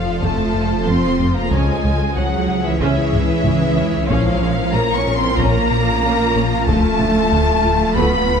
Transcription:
0.00 1.53 F1 medium
0.00 0.20 F3 medium
0.00 1.47 F3 medium
0.00 1.47 F4 soft
0.00 1.47 F4 medium
0.00 1.52 A4 medium
0.00 1.51 C5 medium
0.00 0.19 F5 medium
0.00 0.22 F5 medium
0.21 0.29 F2 medium
0.21 0.41 F2 medium
0.21 0.52 A3 medium
0.21 0.86 A3 medium
0.21 0.85 A5 medium
0.21 0.87 A5 medium
0.21 taiko medium
0.54 0.74 F2 medium
0.86 0.94 F2 medium
0.86 1.06 F3 medium
0.86 0.96 A3 medium
0.86 1.35 C4 medium
0.86 1.34 C4 medium
0.86 1.35 C6 medium
1.19 1.27 F2 soft
1.19 1.39 F2 medium
1.19 1.28 A3 soft
1.33 1.50 A#3 medium
1.33 1.52 A#3 medium
1.33 1.51 A#5 medium
1.33 1.52 A#5 medium
1.49 4.11 C#2 medium
1.49 1.71 C#2 medium
1.49 1.60 C#2 medium
1.49 1.96 G#3 medium
1.49 4.09 G#3 medium
1.49 2.15 G#3 medium
1.49 6.67 C#4 medium
1.49 1.82 C#4 medium
1.49 4.09 E4 medium
1.49 4.06 G#4 medium
1.49 4.09 C#5 medium
1.49 2.15 G#5 medium
1.49 2.16 G#5 medium
1.49 taiko medium
1.84 1.92 C#2 soft
1.84 2.03 C#2 medium
1.84 1.92 C#4 soft
2.13 2.24 C#2 soft
2.13 2.36 C#2 medium
2.13 2.62 F#3 medium
2.13 2.64 F#3 medium
2.13 2.24 C#4 medium
2.13 2.63 F#5 medium
2.13 2.65 F#5 medium
2.49 2.68 C#2 medium
2.64 2.80 E3 medium
2.64 2.80 E5 medium
2.80 3.00 C#2 medium
2.80 2.89 C#2 medium
2.80 4.07 E3 medium
2.80 4.08 E3 medium
2.80 3.10 C#4 medium
2.80 4.07 E5 medium
2.80 taiko medium
3.13 3.32 C#2 medium
3.13 taiko low-mid medium
3.45 3.53 C#2 medium
3.45 3.64 C#3 medium
3.45 3.53 C#4 medium
3.45 taiko low-mid medium
3.77 3.97 C#2 medium
3.77 3.85 C#2 soft
3.77 3.85 C#4 medium
3.77 taiko low medium
4.09 4.17 A#1 medium
4.09 6.68 A#1 medium
4.09 4.29 A#2 medium
4.09 8.40 F3 medium
4.09 4.73 F3 medium
4.09 4.74 F3 medium
4.09 4.39 C#4 medium
4.09 8.40 F4 medium
4.09 6.63 A#4 medium
4.09 4.72 F5 medium
4.09 8.40 F5 medium
4.09 4.73 F5 medium
4.09 taiko medium
4.41 4.49 A#1 medium
4.41 4.61 A#2 medium
4.41 4.50 C#4 soft
4.73 4.81 A#1 soft
4.73 4.93 A#2 medium
4.73 4.95 A#3 medium
4.73 4.82 C#4 medium
4.73 4.95 A#5 medium
4.95 5.17 C#4 medium
4.95 5.17 C#6 medium
5.07 5.26 A#2 medium
5.16 5.38 C4 medium
5.16 5.39 C4 medium
5.16 5.38 C6 medium
5.38 5.46 A#1 medium
5.38 5.58 A#2 loud
5.38 6.65 A#3 medium
5.38 6.68 A#3 medium
5.38 5.69 C#4 medium
5.38 6.67 A#5 medium
5.38 6.68 A#5 loud
5.38 taiko medium
5.71 5.90 A#2 medium
6.02 6.10 A#1 medium
6.02 6.22 A#3 medium
6.02 6.13 C#4 medium
6.35 6.43 A#1 medium
6.35 6.55 A#2 medium
6.35 6.45 C#4 medium
6.66 8.40 D1 medium
6.66 6.75 D2 medium
6.66 6.87 D2 medium
6.66 8.40 A3 medium
6.66 7.94 A3 loud
6.66 7.94 A3 medium
6.66 6.98 A3 medium
6.66 8.40 F4 medium
6.66 7.93 A5 loud
6.66 7.95 A5 medium
6.66 taiko medium
6.99 7.07 D2 medium
6.99 7.19 D2 medium
6.99 7.10 A3 medium
7.31 7.39 D2 medium
7.31 7.51 D2 medium
7.31 7.41 A3 medium
7.64 7.83 D2 medium
7.95 8.15 D2 loud
7.95 8.04 D2 medium
7.95 8.27 A3 medium
7.95 8.40 B3 medium
7.95 8.40 B5 medium
7.95 taiko medium
8.29 8.40 D2 medium

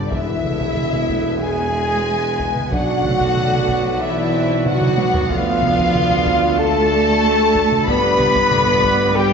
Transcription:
0.00 0.14 G1 medium
0.00 0.11 D3 medium
0.00 0.11 G3 medium
0.00 2.72 B3 medium
0.00 0.10 D4 medium
0.00 0.11 G4 medium
0.00 2.71 B4 medium
0.00 0.10 D5 medium
0.00 0.14 D5 medium
0.10 2.55 E1 medium
0.10 2.71 E2 medium
0.10 1.42 E3 medium
0.10 0.45 G#3 medium
0.10 1.41 E4 loud
0.10 2.72 G#4 medium
0.10 1.40 E5 loud
0.10 2.72 E5 medium
0.10 1.15 E5 medium
0.10 1.43 E5 medium
0.10 taiko medium
0.44 0.77 A3 medium
0.44 taiko mid medium
0.60 taiko medium
0.77 1.10 G#3 medium
0.77 taiko mid medium
0.93 taiko mid medium
1.09 1.42 A3 medium
1.09 taiko medium
1.39 2.73 G#3 medium
1.39 1.74 B3 medium
1.39 2.54 G#4 loud
1.39 2.72 G#5 medium
1.39 2.68 G#5 loud
1.44 2.73 G#5 medium
1.74 2.06 G#3 medium
2.07 2.72 B3 medium
2.40 taiko medium
2.56 taiko mid medium
2.71 5.27 B1 medium
2.71 3.99 F#3 medium
2.71 3.04 D4 medium
2.71 5.27 D4 medium
2.71 3.98 F#4 loud
2.71 5.31 F#4 medium
2.71 5.27 B4 medium
2.71 5.29 D5 medium
2.71 4.02 F#5 loud
2.71 4.04 F#5 medium
2.71 4.00 F#5 loud
2.71 taiko loud
3.04 4.01 A3 medium
3.04 taiko mid medium
3.21 taiko medium
3.37 taiko mid medium
3.53 taiko mid medium
3.68 taiko medium
4.00 4.66 E3 loud
4.00 4.33 B3 medium
4.00 4.66 E4 loud
4.00 4.66 E5 medium
4.00 4.70 E5 medium
4.00 4.66 E5 medium
4.32 4.65 C4 medium
4.65 5.31 F#3 loud
4.65 6.55 B3 loud
4.65 5.31 F#4 loud
4.65 5.30 F#5 loud
4.65 5.30 F#5 medium
4.65 5.31 F#5 loud
4.65 taiko mid medium
4.82 taiko mid loud
4.98 taiko high loud
5.14 taiko low loud
5.30 7.84 D2 medium
5.30 7.90 D2 medium
5.30 6.57 F3 loud
5.30 7.89 A3 medium
5.30 6.57 F4 loud
5.30 7.88 A4 medium
5.30 7.87 D5 medium
5.30 6.57 F5 loud
5.30 6.60 F5 loud
5.30 6.62 F5 loud
5.30 taiko loud
5.62 taiko mid medium
5.79 taiko medium
5.95 taiko mid medium
6.11 taiko mid medium
6.26 taiko loud
6.58 7.88 A3 loud
6.58 7.86 A3 loud
6.58 7.88 A4 loud
6.58 7.88 A5 loud
6.58 7.86 A5 loud
6.58 7.61 A5 loud
7.55 taiko medium
7.72 taiko mid medium
7.86 9.33 G1 loud
7.86 9.33 G2 medium
7.86 8.51 G3 medium
7.86 9.15 B3 loud
7.86 9.33 B3 medium
7.86 9.33 G4 loud
7.86 9.33 B4 loud
7.86 9.15 B4 loud
7.86 9.33 D5 loud
7.86 9.13 B5 loud
7.86 9.14 B5 loud
7.86 taiko loud
8.20 taiko mid medium
8.36 taiko medium
8.51 8.84 A3 medium
8.51 taiko mid medium
8.67 taiko mid medium
8.84 9.33 G3 loud
8.84 taiko loud
9.15 9.33 G3 loud
9.15 9.33 G4 loud
9.15 9.33 G5 medium
9.15 9.33 G5 loud

